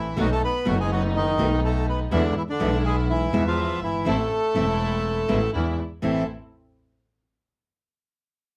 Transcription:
0.00 0.18 A1 medium
0.00 0.17 E3 medium
0.00 0.14 A3 medium
0.00 0.14 C4 medium
0.00 0.14 E4 medium
0.00 0.17 E4 medium
0.16 0.38 B1 loud
0.16 0.26 B2 medium
0.16 0.26 D#3 medium
0.16 0.30 F#3 medium
0.16 0.26 A3 medium
0.16 0.38 A3 medium
0.16 0.26 B3 medium
0.16 0.38 B3 medium
0.16 0.38 D#4 medium
0.16 0.26 F#4 loud
0.16 0.30 F#4 loud
0.32 0.42 A3 medium
0.32 0.42 A4 loud
0.44 0.66 B3 medium
0.44 0.68 B4 loud
0.65 1.35 F#1 loud
0.65 0.74 B2 medium
0.65 0.75 D#3 medium
0.65 0.78 F#3 medium
0.65 0.75 A3 medium
0.65 1.35 A3 medium
0.65 0.75 B3 medium
0.65 1.35 B3 medium
0.65 1.35 D#4 loud
0.65 0.75 F#4 medium
0.65 0.78 F#4 medium
0.80 0.91 G#3 medium
0.80 0.90 G#4 loud
0.92 1.03 F#3 medium
0.92 1.03 F#4 loud
1.16 1.60 D#3 medium
1.16 1.60 D#4 loud
1.38 2.08 B1 loud
1.38 1.47 B2 medium
1.38 1.48 D#3 medium
1.38 2.08 A3 medium
1.38 1.48 A3 medium
1.38 2.08 B3 medium
1.38 1.48 B3 loud
1.38 2.08 D#4 loud
1.38 1.48 F#4 loud
1.64 1.86 A3 medium
1.64 1.86 A4 medium
1.89 1.99 B3 medium
1.89 2.00 B4 medium
2.11 2.32 E2 loud
2.11 2.20 B2 medium
2.11 2.35 D3 medium
2.11 2.20 E3 medium
2.11 2.32 G#3 medium
2.11 2.21 G#3 medium
2.11 2.32 B3 medium
2.11 2.20 B3 loud
2.11 2.35 D4 loud
2.11 2.32 E4 medium
2.11 2.21 E4 medium
2.37 2.43 E3 medium
2.37 2.42 E4 medium
2.50 2.83 D3 medium
2.50 2.83 D4 loud
2.59 3.30 B1 loud
2.59 2.69 B2 medium
2.59 2.69 E3 medium
2.59 3.29 G#3 medium
2.59 2.69 G#3 medium
2.59 3.29 B3 medium
2.59 2.69 B3 loud
2.59 3.29 E4 loud
2.59 2.69 E4 medium
2.85 2.96 G#3 medium
2.85 2.96 G#4 medium
3.10 3.44 E3 medium
3.10 3.43 E4 loud
3.32 3.81 E2 loud
3.32 3.42 B2 medium
3.32 3.42 E3 medium
3.32 4.02 G#3 medium
3.32 3.42 G#3 medium
3.32 4.02 B3 medium
3.32 3.42 B3 loud
3.32 3.42 E4 loud
3.32 4.03 E5 medium
3.47 3.80 F3 medium
3.47 3.80 F4 loud
3.82 4.06 G1 medium
3.82 4.05 E3 medium
3.82 4.08 E4 medium
4.05 4.27 A1 medium
4.05 4.14 E3 medium
4.05 4.27 A3 medium
4.05 4.15 A3 medium
4.05 5.51 A3 medium
4.05 4.27 C4 medium
4.05 4.15 C4 loud
4.05 4.27 E4 medium
4.05 4.15 E4 medium
4.05 5.51 A4 loud
4.54 5.26 E1 medium
4.54 4.64 E3 medium
4.54 5.25 A3 medium
4.54 4.64 A3 medium
4.54 5.25 C4 medium
4.54 4.64 C4 medium
4.54 5.25 E4 loud
4.54 4.64 E4 medium
5.28 5.50 A1 loud
5.28 5.38 B2 medium
5.28 5.38 D3 medium
5.28 5.38 G#3 medium
5.28 5.49 A3 medium
5.28 5.38 B3 medium
5.28 5.50 C4 medium
5.28 5.50 E4 medium
5.28 5.38 E4 medium
5.53 5.75 E2 loud
5.53 5.74 G#3 medium
5.53 5.74 D4 medium
5.53 5.74 E4 medium
6.02 6.24 A1 medium
6.02 6.22 A2 medium
6.02 6.23 E3 medium
6.02 6.24 A3 medium
6.02 6.23 A3 medium
6.02 6.24 C4 soft
6.02 6.23 C4 medium
6.02 6.24 E4 medium
6.02 6.23 E4 medium
6.02 6.27 A4 medium

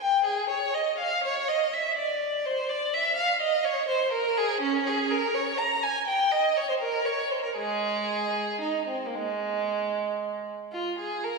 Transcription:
0.01 0.25 G5 medium
0.25 0.49 G#4 medium
0.49 0.73 C#5 medium
0.74 0.98 D#5 medium
0.99 1.22 F5 medium
1.24 1.47 C#5 medium
1.48 1.72 D#5 medium
1.73 1.97 E5 medium
1.97 2.43 D5 medium
2.46 2.69 C5 medium
2.69 2.93 D5 medium
2.94 3.17 E5 medium
3.16 3.40 F5 medium
3.41 3.64 D#5 medium
3.64 3.88 C#5 medium
3.88 4.11 C5 medium
4.12 4.37 A#4 medium
4.37 4.63 G#4 medium
4.61 4.86 C#4 medium
4.87 5.11 G#4 medium
5.10 5.34 A#4 medium
5.34 5.58 C#5 medium
5.58 5.82 A#5 medium
5.82 6.06 G#5 medium
6.07 6.31 G5 medium
6.31 6.55 D#5 medium
6.57 6.68 C#5 medium
6.69 6.74 C5 medium
6.80 7.05 A#4 medium
7.05 7.31 C#5 medium
7.30 7.43 C5 medium
7.43 7.56 A#4 medium
7.57 8.32 G#3 medium
7.57 8.60 G#4 medium
8.61 8.87 D#4 soft
8.88 9.06 C4 medium
9.06 9.14 A#3 soft
9.15 10.46 G#3 medium
10.72 10.97 F4 medium
10.98 11.23 G#4 medium
11.23 11.38 A#4 medium

